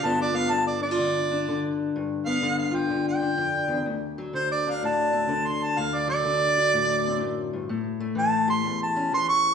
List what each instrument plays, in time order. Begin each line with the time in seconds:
0.03 steel-string acoustic guitar G2 D3 B3 D4 F4, harmonica A5
0.22 harmonica D5
0.34 steel-string acoustic guitar B3, harmonica F5
0.51 steel-string acoustic guitar D3, harmonica A5
0.67 harmonica D5
0.81 steel-string acoustic guitar D4, harmonica D5
0.91 steel-string acoustic guitar F4
0.99 steel-string acoustic guitar D3
1.31 steel-string acoustic guitar D4
1.48 steel-string acoustic guitar D3
1.96 steel-string acoustic guitar G2
2.26 steel-string acoustic guitar B3, harmonica F5
2.43 steel-string acoustic guitar D3
2.59 harmonica F5
2.71 steel-string acoustic guitar F4
2.75 harmonica G5
2.90 steel-string acoustic guitar D3
3.08 harmonica G5
3.22 steel-string acoustic guitar D4
3.37 steel-string acoustic guitar F2
3.68 steel-string acoustic guitar E2
3.86 steel-string acoustic guitar D2
4.18 steel-string acoustic guitar F#3
4.33 steel-string acoustic guitar D3, harmonica C5
4.52 harmonica D5
4.67 steel-string acoustic guitar D4, harmonica F5
4.83 steel-string acoustic guitar A2, harmonica A5
5.13 steel-string acoustic guitar C4
5.29 steel-string acoustic guitar D3
5.48 harmonica C6
5.64 harmonica A5
5.78 steel-string acoustic guitar D2, harmonica F5
5.95 harmonica D5
6.08 steel-string acoustic guitar F#3, harmonica D5
6.25 steel-string acoustic guitar D3
6.58 steel-string acoustic guitar F#4
6.73 steel-string acoustic guitar A2
7.07 steel-string acoustic guitar C4
7.20 steel-string acoustic guitar F#2
7.53 steel-string acoustic guitar G2
7.69 steel-string acoustic guitar A2
8.00 steel-string acoustic guitar A3
8.15 steel-string acoustic guitar E3, harmonica A5
8.48 steel-string acoustic guitar G4, harmonica C6
8.65 steel-string acoustic guitar E2
8.83 harmonica A5
8.96 steel-string acoustic guitar C#4
9.13 steel-string acoustic guitar E3, harmonica C6
9.29 harmonica C#6